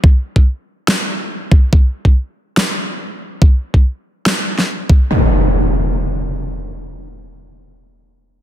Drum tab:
SD |--------o-------|--------o-------|--------o--o----|----------------|
BD |o--o----------o-|o--o------------|o--o----------o-|----------------|

SD |----------------|
BD |----------------|